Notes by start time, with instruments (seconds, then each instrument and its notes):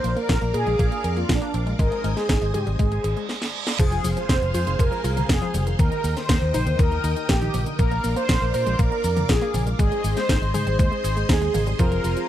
Already playing: string machine A#4 D5 F5 D6, analog polysynth C5
0.04 fingered electric bass A#1, synth arpeggio sound A#3, closed hi-hat
0.16 synth arpeggio sound A#3, analog polysynth A#4, closed hi-hat
0.29 fingered electric bass A#1, synth arpeggio sound F4, kick, snare, closed hi-hat
0.42 fingered electric bass A#1, synth arpeggio sound A#3, closed hi-hat
0.53 fingered electric bass A#2, analog polysynth G#4, synth arpeggio sound A#4, closed hi-hat
0.67 fingered electric bass A#1, synth arpeggio sound G#3, closed hi-hat
0.79 fingered electric bass A#1, synth arpeggio sound A#3, kick, closed hi-hat
0.92 synth arpeggio sound A#3, closed hi-hat
1.04 fingered electric bass F2, synth arpeggio sound A#4, closed hi-hat
1.16 synth arpeggio sound A#3, analog polysynth F4, closed hi-hat
1.29 fingered electric bass A#1, analog polysynth D4, synth arpeggio sound F4, kick, snare, closed hi-hat
1.42 synth arpeggio sound A#3, closed hi-hat
1.54 fingered electric bass A#1, synth arpeggio sound C4, closed hi-hat
1.67 synth arpeggio sound G#3, closed hi-hat
1.79 fingered electric bass G#1, synth arpeggio sound G#3, analog polysynth A#4, string machine C5 D#5 G#5 D#6, kick, closed hi-hat
1.92 synth arpeggio sound G#3, closed hi-hat
2.04 fingered electric bass G#1, synth arpeggio sound G#3, closed hi-hat
2.16 synth arpeggio sound G#3, analog polysynth G#4, snare, closed hi-hat
2.29 fingered electric bass G#1, synth arpeggio sound D#4, kick, snare, closed hi-hat
2.42 fingered electric bass G#1, synth arpeggio sound G#3, closed hi-hat
2.54 fingered electric bass G#2, analog polysynth G4, synth arpeggio sound G#4, closed hi-hat, high tom
2.67 fingered electric bass G#1, synth arpeggio sound G3, closed hi-hat
2.79 fingered electric bass G#1, synth arpeggio sound G#3, analog polysynth G#4, kick, closed hi-hat, reverse cymbal
2.92 synth arpeggio sound G#3, closed hi-hat
3.04 fingered electric bass G#1, synth arpeggio sound G#4, closed hi-hat
3.17 synth arpeggio sound G#3, closed hi-hat
3.29 snare
3.42 snare
3.67 snare
3.79 fingered electric bass F1, synth arpeggio sound F3, string machine G#4 C5 F5 C6, analog polysynth G#4, kick, closed hi-hat, crash, impact, cabasa
3.92 synth arpeggio sound F3, closed hi-hat, cabasa
4.04 fingered electric bass F1, synth arpeggio sound F3, open hi-hat, cabasa
4.17 synth arpeggio sound F3, analog polysynth C5, closed hi-hat, cabasa
4.29 fingered electric bass F1, synth arpeggio sound C4, kick, snare, closed hi-hat, cabasa
4.42 fingered electric bass F1, synth arpeggio sound F3, cabasa
4.54 fingered electric bass F2, synth arpeggio sound F4, analog polysynth C5, open hi-hat, cabasa
4.67 fingered electric bass F1, synth arpeggio sound D#3, closed hi-hat, cabasa
4.79 fingered electric bass F1, synth arpeggio sound F3, analog polysynth A#4, kick, closed hi-hat, cabasa
4.92 synth arpeggio sound F3, cabasa
5.04 fingered electric bass C2, synth arpeggio sound F4, open hi-hat, cabasa
5.17 synth arpeggio sound F3, closed hi-hat, high tom, cabasa
5.29 fingered electric bass F1, synth arpeggio sound C4, analog polysynth G#4, kick, snare, closed hi-hat, cabasa
5.42 synth arpeggio sound F3, closed hi-hat, cabasa
5.54 fingered electric bass F1, synth arpeggio sound G3, open hi-hat, high tom, cabasa
5.67 synth arpeggio sound D#3, closed hi-hat, cabasa
5.79 fingered electric bass D#2, synth arpeggio sound D#3, analog polysynth A#4, string machine A#4 D#5 G5 D#6, kick, closed hi-hat, cabasa
5.92 synth arpeggio sound D#3, closed hi-hat, cabasa
6.04 fingered electric bass D#2, synth arpeggio sound D#3, open hi-hat, cabasa
6.16 synth arpeggio sound D#3, analog polysynth C5, snare, closed hi-hat, cabasa
6.29 fingered electric bass D#2, synth arpeggio sound A#3, kick, snare, closed hi-hat, cabasa
6.41 fingered electric bass D#2, synth arpeggio sound D#3, cabasa
6.54 fingered electric bass A#1, synth arpeggio sound D#4, analog polysynth C5, open hi-hat, high tom, cabasa
6.66 fingered electric bass D#2, synth arpeggio sound D3, closed hi-hat, cabasa
6.79 fingered electric bass D#2, synth arpeggio sound D#3, analog polysynth A#4, kick, closed hi-hat, cabasa
6.92 synth arpeggio sound D#3, cabasa
7.04 fingered electric bass D#2, synth arpeggio sound D#4, open hi-hat, cabasa
7.16 synth arpeggio sound D#3, closed hi-hat, cabasa
7.29 fingered electric bass A#1, synth arpeggio sound A#3, analog polysynth G4, kick, snare, closed hi-hat, cabasa
7.41 synth arpeggio sound D#3, closed hi-hat, cabasa
7.54 fingered electric bass A#1, synth arpeggio sound F3, open hi-hat, high tom, cabasa
7.66 synth arpeggio sound D3, closed hi-hat, cabasa
7.79 fingered electric bass A#1, synth arpeggio sound A#3, analog polysynth A#4, string machine D5 F5 D6, kick, closed hi-hat, cabasa
7.91 synth arpeggio sound A#3, closed hi-hat, cabasa
8.04 fingered electric bass A#1, synth arpeggio sound A#3, open hi-hat, cabasa
8.16 synth arpeggio sound A#3, analog polysynth C5, closed hi-hat, cabasa
8.29 fingered electric bass A#1, synth arpeggio sound F4, kick, snare, closed hi-hat, cabasa
8.42 fingered electric bass A#1, synth arpeggio sound A#3, cabasa
8.54 fingered electric bass A#2, synth arpeggio sound A#4, analog polysynth C5, open hi-hat, cabasa
8.66 fingered electric bass A#1, synth arpeggio sound G#3, closed hi-hat, cabasa
8.79 fingered electric bass A#1, synth arpeggio sound A#3, analog polysynth A#4, kick, closed hi-hat, cabasa
8.91 synth arpeggio sound A#3, cabasa
9.04 fingered electric bass F2, synth arpeggio sound A#4, open hi-hat, cabasa
9.17 synth arpeggio sound A#3, closed hi-hat, high tom, cabasa
9.29 fingered electric bass A#1, synth arpeggio sound F4, analog polysynth G#4, kick, snare, closed hi-hat, cabasa
9.42 synth arpeggio sound A#3, closed hi-hat, cabasa
9.54 fingered electric bass A#1, synth arpeggio sound C4, open hi-hat, high tom, cabasa
9.67 synth arpeggio sound G#3, closed hi-hat, cabasa
9.79 fingered electric bass G#1, synth arpeggio sound G#3, analog polysynth G#4, string machine G#4 C5 D#5 C6, kick, closed hi-hat, cabasa
9.92 synth arpeggio sound G#3, closed hi-hat, cabasa
10.04 fingered electric bass G#1, synth arpeggio sound G#3, open hi-hat, cabasa
10.16 synth arpeggio sound G#3, analog polysynth C5, snare, closed hi-hat, cabasa
10.29 fingered electric bass G#1, synth arpeggio sound D#4, kick, snare, closed hi-hat, cabasa
10.42 fingered electric bass G#1, synth arpeggio sound G#3, cabasa
10.54 fingered electric bass G#2, synth arpeggio sound G#4, analog polysynth C5, open hi-hat, high tom, cabasa
10.67 fingered electric bass G#1, synth arpeggio sound G3, closed hi-hat, cabasa
10.79 fingered electric bass D#2, synth arpeggio sound G#3, analog polysynth C5, kick, closed hi-hat, cabasa
10.92 synth arpeggio sound G#3, cabasa
11.04 fingered electric bass G#1, synth arpeggio sound G#4, open hi-hat, cabasa
11.17 synth arpeggio sound G#3, closed hi-hat, cabasa
11.29 fingered electric bass D#2, synth arpeggio sound D#4, analog polysynth G#4, kick, snare, closed hi-hat, cabasa
11.42 synth arpeggio sound G#3, closed hi-hat, cabasa
11.54 fingered electric bass G#1, synth arpeggio sound A#3, open hi-hat, high tom, cabasa
11.67 synth arpeggio sound G3, closed hi-hat, cabasa
11.79 fingered electric bass F1, synth arpeggio sound F3, grand piano F3 C4 F4 G#4 C5, analog polysynth A#4, string machine F5, kick, closed hi-hat, cabasa
11.92 synth arpeggio sound F3, closed hi-hat, cabasa
12.04 fingered electric bass F1, synth arpeggio sound F3, open hi-hat, cabasa
12.17 synth arpeggio sound F3, closed hi-hat, cabasa